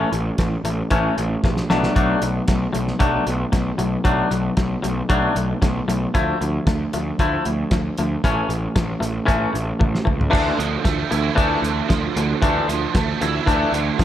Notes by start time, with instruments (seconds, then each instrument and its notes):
Already playing: clean electric guitar E3 A3 C#4
0.12 picked electric bass A1, clean electric guitar E3 A3, closed hi-hat
0.38 picked electric bass A1, clean electric guitar E3 A3, kick, snare, closed hi-hat
0.64 picked electric bass A1, clean electric guitar E3 A3, closed hi-hat
0.91 picked electric bass A1, clean electric guitar E3 A3 C#4, kick, closed hi-hat
1.18 picked electric bass A1, clean electric guitar E3 A3, closed hi-hat
1.44 picked electric bass A#1, clean electric guitar E3 A3, kick, snare
1.57 snare
1.70 picked electric bass B1, clean electric guitar F#3 A3 D4, snare
1.83 snare
1.95 picked electric bass B1, clean electric guitar F#3 A3 D4, kick, closed hi-hat
2.22 picked electric bass B1, clean electric guitar F#3 A3, closed hi-hat
2.48 picked electric bass B1, clean electric guitar F#3 A3, kick, snare, closed hi-hat
2.73 picked electric bass B1, clean electric guitar F#3 A3, closed hi-hat
2.88 snare
2.99 picked electric bass B1, clean electric guitar F#3 A3 D4, kick, closed hi-hat
3.26 picked electric bass B1, clean electric guitar F#3 A3, closed hi-hat
3.52 picked electric bass B1, clean electric guitar F#3 A3, kick, snare, closed hi-hat
3.78 picked electric bass B1, clean electric guitar F#3 A3, closed hi-hat
4.04 picked electric bass B1, clean electric guitar F#3 A3 D4, kick, closed hi-hat
4.31 picked electric bass B1, clean electric guitar F#3 A3, closed hi-hat
4.57 picked electric bass B1, clean electric guitar F#3 A3, kick, snare, closed hi-hat
4.82 picked electric bass B1, clean electric guitar F#3 A3, closed hi-hat
5.09 picked electric bass B1, clean electric guitar F#3 A3 D4, kick, closed hi-hat
5.35 picked electric bass B1, clean electric guitar F#3 A3, closed hi-hat
5.62 picked electric bass B1, clean electric guitar F#3 A3, kick, snare, closed hi-hat
5.88 picked electric bass B1, clean electric guitar F#3 A3, closed hi-hat
6.14 picked electric bass D2, clean electric guitar F3 A3 E4, kick, closed hi-hat
6.41 picked electric bass D2, clean electric guitar F3 A3, closed hi-hat
6.67 picked electric bass D2, clean electric guitar F3 A3, kick, snare, closed hi-hat
6.93 picked electric bass D2, clean electric guitar F3 A3, closed hi-hat
7.19 picked electric bass D2, clean electric guitar F3 A3 E4, kick, closed hi-hat
7.45 picked electric bass D2, clean electric guitar F3 A3, closed hi-hat
7.71 picked electric bass D2, clean electric guitar F3 A3, kick, snare, closed hi-hat
7.98 picked electric bass D2, clean electric guitar F3 A3, closed hi-hat
8.24 picked electric bass A1, clean electric guitar E3 A3 C#4, kick, closed hi-hat
8.49 picked electric bass A1, clean electric guitar E3 A3, closed hi-hat
8.76 picked electric bass A1, clean electric guitar E3 A3, kick, snare, closed hi-hat
9.00 picked electric bass A1, clean electric guitar E3 A3, closed hi-hat
9.26 picked electric bass A1, clean electric guitar E3 A3 C#4, kick, closed hi-hat
9.53 picked electric bass A1, clean electric guitar E3 A3, closed hi-hat
9.80 picked electric bass A1, clean electric guitar E3 A3, kick, high tom
9.95 snare
10.05 picked electric bass C#2, clean electric guitar E3 A3, kick
10.21 floor tom
10.30 picked electric bass D2, overdriven electric guitar D3, clean electric guitar E3 A3 D4, kick
10.34 crash
10.57 picked electric bass D2, clean electric guitar E3 A3, overdriven electric guitar F3, closed hi-hat
10.84 picked electric bass D2, clean electric guitar E3 A3, overdriven electric guitar A3, kick, snare, closed hi-hat
11.10 picked electric bass D2, clean electric guitar E3 A3, overdriven electric guitar E4, closed hi-hat
11.35 picked electric bass D2, clean electric guitar E3 A3 D4, overdriven electric guitar A3, kick, closed hi-hat
11.62 picked electric bass D2, overdriven electric guitar D3, clean electric guitar E3 A3, closed hi-hat
11.89 picked electric bass D2, clean electric guitar E3 A3, overdriven electric guitar F3, kick, snare, closed hi-hat
12.15 picked electric bass D2, overdriven electric guitar D3, clean electric guitar E3 A3, closed hi-hat
12.42 picked electric bass D2, overdriven electric guitar D3, clean electric guitar E3 A3 D4, kick, closed hi-hat
12.68 picked electric bass D2, clean electric guitar E3 A3, overdriven electric guitar F3, closed hi-hat
12.94 picked electric bass D2, clean electric guitar E3 A3, overdriven electric guitar A3, kick, snare, closed hi-hat
13.21 picked electric bass D2, clean electric guitar E3 A3, overdriven electric guitar E4, closed hi-hat
13.46 picked electric bass D2, clean electric guitar E3 A3 D4, overdriven electric guitar A3, kick, closed hi-hat
13.72 picked electric bass D2, overdriven electric guitar D3, clean electric guitar E3 A3, closed hi-hat
13.99 picked electric bass D2, clean electric guitar E3 A3, overdriven electric guitar F3, kick, snare, closed hi-hat